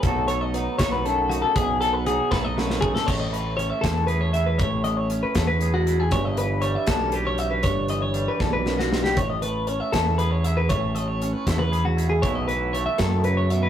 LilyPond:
<<
  \new Staff \with { instrumentName = "Clean electric guitar" } { \time 6/8 \key a \lydian \tempo 4. = 79 a'8 cis''16 dis''16 b'8 cis''16 b'16 a'8 fis'16 a'16 | gis'8 a'16 b'16 gis'8 b'16 dis''16 b'8 gis'16 a'16 | cis''16 dis''16 b'8 cis''16 e''16 a'8 b'16 cis''16 e''16 b'16 | cis''8 dis''16 cis''8 b'16 a'16 b'8 fis'8 gis'16 |
cis''16 dis''16 b'8 cis''16 e''16 a'8 b'16 cis''16 e''16 b'16 | cis''8 dis''16 cis''8 b'16 a'16 b'8 fis'8 g'16 | cis''16 dis''16 b'8 cis''16 e''16 a'8 b'16 cis''16 e''16 b'16 | cis''8 dis''16 cis''8 b'16 a'16 b'8 fis'8 gis'16 |
cis''16 dis''16 b'8 cis''16 e''16 a'8 b'16 cis''16 e''16 b'16 | }
  \new Staff \with { instrumentName = "Clean electric guitar" } { \time 6/8 \key a \lydian << { <fis a dis' a'>8 a'8 dis'8 a'8 a8 dis'8 | r8 a'8 dis'8 a'8 a8 dis'8 | r4 cis'8 e'8 gis'8 e'8 | r4 cis'8 e'8 gis'8 e'8 |
r4 g8 b16 cis'16 g'8 cis'8 | r4 g2 | r4 cis'8 e'8 gis'8 e'8 | r4 cis'8 e'8 gis'8 e'8 |
<e a b e'>4 a2 | } \\ { b,4 fis4 fis,4 | b,4 fis4 fis,4 | a,8 a2~ a8 | a,8 a2~ a8 |
g,8 e2~ e8 | g,8 e4 e,8 fis,8 g,8 | a,8 a2~ a8 | a,8 a2~ a8 |
b,8 e4 dis8 cis8 b,8 | } >> }
  \new Staff \with { instrumentName = "Fingered electric bass" } { \clef bass \time 6/8 \key a \lydian b,,4. b,,4. | b,,4. b,,4. | a,,4. e,4. | a,,4. e,4. |
g,,4. b,,4. | g,,4. b,,4. | a,,4. e,4. | a,,4. e,4. |
b,,4. fis,4. | }
  \new DrumStaff \with { instrumentName = "Drums" } \drummode { \time 6/8 <hh bd>8 hh8 hh8 <hh bd sn>8 hh8 hh8 | <hh bd>8 hh8 hh8 <bd sn>8 sn16 sn16 bd16 sn16 | <cymc bd>8 hh8 hh8 <hh bd sn>8 hh8 hh8 | <hh bd>8 hh8 hh8 <hh bd sn>8 hh8 hh8 |
<hh bd>8 hh8 hh8 <hh bd sn>8 hh8 hh8 | <hh bd>8 hh8 hh8 <bd sn>8 sn16 sn16 sn16 sn16 | <hh bd>8 hh8 hh8 <hh bd sn>8 hh8 hh8 | <hh bd>8 hh8 hh8 <hh bd sn>8 hh8 hh8 |
<hh bd>8 hh8 hh8 <hh bd sn>8 hh8 hh8 | }
>>